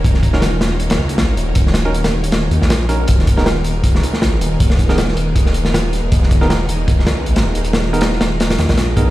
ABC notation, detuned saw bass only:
X:1
M:4/4
L:1/16
Q:"Swing 16ths" 1/4=158
K:Abdor
V:1 name="Detuned saw bass" clef=bass
E,,,6 E,,,4 D,,2 A,,,2 E,,,2- | E,,,6 E,,,4 E,, B,,,4- B,,, | E,,,6 E,,,4 D,,2 A,,,2 E,,,2- | E,,,6 E,,,4 E,,,4- E,,, E,,, |
E,,,6 E,,,4 D,,2 A,,,2 E,,,2- | E,,,6 E,,,4 E,, B,,,4- B,,, |]